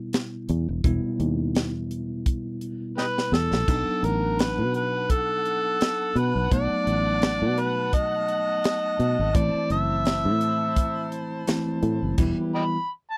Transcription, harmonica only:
2.98 3.04 D#4 medium
2.98 3.06 G4 medium
2.98 3.35 B4 medium
3.33 4.06 A4 medium
4.04 4.42 A#4 medium
4.40 4.75 B4 medium
4.76 5.12 B4 medium
5.11 6.19 A4 medium
6.17 6.52 B4 medium
6.53 7.61 D5 loud
7.59 7.93 B4 medium
7.94 9.37 D#5 loud
9.35 9.71 D5 loud
9.71 11.09 E5 loud
12.55 12.63 D#5 medium
12.55 12.64 G5 medium
12.55 12.89 B5 loud
13.10 13.18 A5 medium

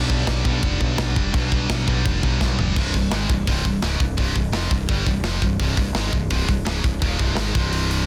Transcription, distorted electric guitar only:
0.00 0.44 G2 medium
0.00 0.45 D3 medium
0.00 0.44 G3 loud
0.44 1.32 G2 medium
0.44 1.33 D3 medium
0.44 1.36 G3 medium
1.34 1.86 G2 medium
1.34 1.87 D3 medium
1.34 1.86 G3 loud
1.87 2.76 G2 medium
1.87 2.76 D3 medium
1.87 2.75 G3 medium
2.76 2.94 C2 medium
2.76 2.94 G2 medium
2.76 2.94 C3 loud
2.95 3.08 C2 soft
2.95 3.09 G2 medium
3.12 3.29 G#2 medium
3.12 3.29 D#3 medium
3.12 3.29 G#3 loud
3.30 3.44 C2 medium
3.30 3.44 G2 medium
3.47 3.64 C2 medium
3.47 3.64 G2 medium
3.47 3.65 C3 medium
3.65 3.79 C2 medium
3.65 3.79 G2 medium
3.82 4.00 C#2 medium
3.82 4.00 G#2 medium
3.82 4.00 C#3 loud
4.00 4.15 C2 medium
4.00 4.15 G2 medium
4.17 4.34 C2 medium
4.17 4.35 G2 medium
4.17 4.35 C3 loud
4.36 4.50 C2 medium
4.36 4.50 G2 medium
4.53 4.70 F2 medium
4.53 4.71 C3 medium
4.53 4.71 F3 medium
4.71 4.85 C2 medium
4.71 4.86 G2 medium
4.89 5.06 G2 medium
4.89 5.07 D3 medium
4.89 5.07 G3 loud
5.07 5.21 C2 medium
5.07 5.22 G2 medium
5.24 5.42 F2 loud
5.24 5.42 C3 medium
5.24 5.42 F3 loud
5.43 5.57 C2 medium
5.43 5.57 G2 medium
5.60 5.77 C2 medium
5.60 5.77 G2 loud
5.60 5.78 C3 loud
5.78 5.92 C2 medium
5.78 5.92 G2 medium
5.95 6.13 G#2 medium
5.95 6.13 D#3 medium
5.95 6.13 G#3 loud
6.13 6.28 C2 medium
6.13 6.28 G2 medium
6.31 6.47 C2 medium
6.31 6.47 G2 medium
6.31 6.49 C3 loud
6.48 6.63 C2 medium
6.48 6.63 G2 medium
6.66 6.83 C#2 loud
6.66 6.84 G#2 loud
6.66 6.84 C#3 loud
6.85 6.99 C2 medium
6.85 6.99 G2 medium
7.02 7.19 D#2 medium
7.02 7.20 A#2 medium
7.02 7.20 D#3 loud
7.20 7.37 C2 medium
7.20 7.37 G2 medium
7.20 7.38 C3 medium
7.37 7.55 G#2 medium
7.37 7.55 D#3 medium
7.37 7.55 G#3 medium
7.55 8.06 C2 medium
7.55 8.06 G2 medium
7.55 8.06 C3 loud

